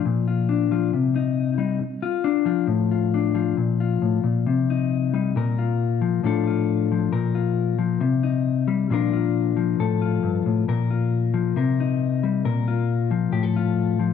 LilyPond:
\new Staff \with { instrumentName = "Clean electric guitar" } { \time 4/4 \key bes \major \tempo 4 = 136 << { r8 f'8 d'8 f'8 r8 ees'4 ees'8 | r8 f'8 d'8 f'8 r8 f'8 d'8 f'8 | r8 f'4. r8 ees'4 ees'8 | bes'8 f'4. <f d' f' a'>8 f'4. |
bes'8 f'4. r8 ees'4. | <f d' f' bes'>8 f'4. a'8 f'4. | bes'8 f'4. bes'8 ees'4. | bes'8 f'4. g'16 a'16 f'4. | } \\ { <bes, f>4. f8 c4. g8 | r4. f8 a,4. f8 | bes,4 a,8 bes,8 c4. g8 | bes,4. f8 a,4. f8 |
bes,4. f8 c4. g8 | bes,4. f8 a,4 g,8 a,8 | bes,4. f8 c4. g8 | bes,4. f8 a,4. f8 | } >> }